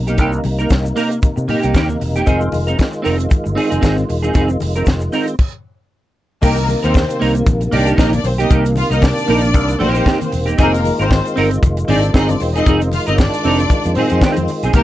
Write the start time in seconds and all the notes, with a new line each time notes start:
Already playing: B1 C3 A#3 D#4
0.07 A#3 D#4 G4, closed hi-hat, shaker
0.18 C2 A#3 D#4 G4, kick, closed hi-hat, muted conga, shaker
0.32 muted clean electric guitar stroke, shaker
0.44 C2, muted clean electric guitar stroke, open hi-hat, muted conga, shaker
0.59 A#3 D#4 A#4, closed hi-hat, shaker
0.70 C2, muted clean electric guitar stroke, kick, snare, closed hi-hat, high conga, shaker
0.84 muted clean electric guitar stroke, shaker
0.96 A#3 D#4 A#4, open hi-hat, shaker
1.10 muted clean electric guitar stroke, closed hi-hat, shaker
1.22 muted clean electric guitar stroke, muted fingered electric bass stroke, kick, closed hi-hat, muted conga, shaker
1.36 C3, muted clean electric guitar stroke, shaker
1.48 A#3 D#4 G4, open hi-hat, muted conga, low conga
1.63 C2 A#3 D#4 G4, closed hi-hat, shaker
1.74 D#2 A#3 D#4 G4, kick, snare, closed hi-hat, high conga, shaker
1.89 muted clean electric guitar stroke, high conga, shaker
2.00 E1, muted clean electric guitar stroke, open hi-hat
2.16 A#3 D#4 G4, closed hi-hat, shaker
2.26 F1 D#3 G#3 C4 D#4 F4 G#4, kick, closed hi-hat, muted conga, shaker
2.41 muted clean electric guitar stroke, shaker
2.52 F1, muted clean electric guitar stroke, open hi-hat, muted conga, shaker
2.67 C4 D#4 A#4, closed hi-hat, shaker
2.78 muted clean electric guitar stroke, kick, snare, closed hi-hat, high conga, shaker
2.92 muted clean electric guitar stroke, shaker
3.02 F1 C4 D#4 A#4, open hi-hat, shaker
3.18 muted clean electric guitar stroke, closed hi-hat, shaker
3.29 muted clean electric guitar stroke, kick, closed hi-hat, muted conga, shaker
3.44 G1, muted clean electric guitar stroke, shaker
3.55 C4 D#4 G#4, open hi-hat, muted conga
3.70 F1 C4 D#4 G#4, closed hi-hat, shaker
3.81 G#1 C4 D#4 G#4, kick, snare, closed hi-hat, high conga, shaker
3.97 muted clean electric guitar stroke, high conga, shaker
4.09 E1, muted clean electric guitar stroke, open hi-hat
4.23 C4 D#4 G#4, closed hi-hat, shaker
4.34 F1 C4 D#4 G#4, kick, closed hi-hat, muted conga, shaker
4.49 muted clean electric guitar stroke, shaker
4.60 F1, muted clean electric guitar stroke, open hi-hat, muted conga, shaker
4.75 C4 D#4 A#4, closed hi-hat, shaker
4.86 F1, muted clean electric guitar stroke, kick, snare, closed hi-hat, high conga, shaker
5.01 muted clean electric guitar stroke, shaker
5.12 C4 D#4 A#4, open hi-hat, shaker
5.27 muted clean electric guitar stroke, closed hi-hat, shaker
5.39 kick, crash
6.42 C2 C3 D#3 A#3 D#4 G4 A#4, kick, crash, muted conga, shaker
6.57 muted clean electric guitar stroke, closed hi-hat, shaker
6.68 muted clean electric guitar stroke, open hi-hat, muted conga, shaker
6.83 D#2 A#3 C4 D#4 A#4 C5, closed hi-hat, shaker
6.94 muted clean electric guitar stroke, kick, snare, high conga, shaker
7.09 muted clean electric guitar stroke, closed hi-hat, shaker
7.20 C2 A#3 D#4 A#4, open hi-hat
7.35 muted clean electric guitar stroke, closed hi-hat, shaker
7.47 A#1, muted clean electric guitar stroke, kick, closed hi-hat, muted conga, shaker
7.61 muted clean electric guitar stroke, closed hi-hat, shaker
7.71 C2 A#3 D4 D#4 G4 D5, open hi-hat, muted conga, low conga
7.86 A#3 D#4 G4, closed hi-hat, shaker
7.97 A#1 A#3 D#4 G4 D#5, kick, snare, high conga, shaker
8.12 D4 D5, muted clean electric guitar stroke, closed hi-hat, high conga, shaker
8.24 B1 C4 C5, muted clean electric guitar stroke, open hi-hat, shaker
8.38 A#3 D#4 G4 D#5, closed hi-hat, shaker
8.50 C2 A#3 D#4 G4, kick, closed hi-hat, muted conga, shaker
8.65 muted clean electric guitar stroke, closed hi-hat, shaker
8.76 F4 F5, muted clean electric guitar stroke, open hi-hat, muted conga, shaker
8.91 C2 A#3 D#4 A#4 D#5, closed hi-hat, shaker
9.02 D4 D5, muted clean electric guitar stroke, kick, snare, high conga, shaker
9.17 muted clean electric guitar stroke, closed hi-hat, shaker
9.28 A#1 A#3 D#4 A#4, open hi-hat
9.43 muted clean electric guitar stroke, closed hi-hat, shaker
9.53 C2, muted clean electric guitar stroke, kick, closed hi-hat, muted conga, shaker
9.68 muted clean electric guitar stroke, closed hi-hat, shaker
9.79 A#1 A#3 C4 D#4 G4 C5, open hi-hat, muted conga, low conga
9.94 A#3 D#4 G4, closed hi-hat, shaker
10.05 A#3 D#4 G4, kick, snare, high conga, shaker
10.20 muted clean electric guitar stroke, closed hi-hat, high conga, shaker
10.31 E1, muted clean electric guitar stroke, open hi-hat, shaker
10.46 A#3 D#4 G4, closed hi-hat, shaker
10.58 F1 D#3 G#3 A#3 C4 D#4 F4 G#4 A#4, kick, closed hi-hat, muted conga, shaker
10.73 muted clean electric guitar stroke, closed hi-hat, shaker
10.84 muted clean electric guitar stroke, open hi-hat, muted conga, shaker
10.99 G#1 C4 D#4 A#4 C5, closed hi-hat, shaker
11.11 muted clean electric guitar stroke, kick, snare, high conga, shaker
11.25 muted clean electric guitar stroke, closed hi-hat, shaker
11.36 G1 C4 D#4 A#4, open hi-hat
11.51 muted clean electric guitar stroke, closed hi-hat, shaker
11.63 F1, kick, closed hi-hat, muted conga, shaker
11.77 muted clean electric guitar stroke, closed hi-hat, shaker
11.88 G#1 C4 D4 D#4 G#4 D5, open hi-hat, muted conga, low conga
12.02 muted clean electric guitar stroke, closed hi-hat, shaker
12.14 G1 C4 D#4 G#4 D#5, kick, snare, high conga, shaker
12.28 D4 D5, muted clean electric guitar stroke, closed hi-hat, high conga, shaker
12.40 E1 C4 C5, muted clean electric guitar stroke, open hi-hat, shaker
12.54 C4 D#4 G#4 D#5, closed hi-hat, shaker
12.66 F1 C4 D#4 G#4, kick, closed hi-hat, muted conga, shaker
12.81 muted clean electric guitar stroke, closed hi-hat, shaker
12.92 F4 F5, muted clean electric guitar stroke, open hi-hat, muted conga, shaker
13.07 G1 C4 D#4 A#4 D#5, closed hi-hat, shaker
13.18 D4 D5, muted clean electric guitar stroke, kick, snare, high conga, shaker
13.33 muted clean electric guitar stroke, closed hi-hat, shaker
13.44 F1 C4 D#4 A#4, open hi-hat
13.58 muted clean electric guitar stroke, closed hi-hat, shaker
13.70 muted clean electric guitar stroke, kick, closed hi-hat, muted conga, shaker
13.84 F2, muted clean electric guitar stroke, closed hi-hat, shaker
13.95 C4 D#4 G#4 C5, open hi-hat, low conga
14.10 F2 C4 D#4 G#4, closed hi-hat, shaker
14.22 C4 D#4 G#4, kick, snare, high conga, shaker
14.36 F2, muted clean electric guitar stroke, closed hi-hat, high conga, shaker
14.48 muted clean electric guitar stroke, open hi-hat, shaker
14.63 B1 C4 D#4 G#4, closed hi-hat, shaker
14.73 C2 C3 D#3 A#3 D#4 G4 A#4, kick, closed hi-hat, muted conga, shaker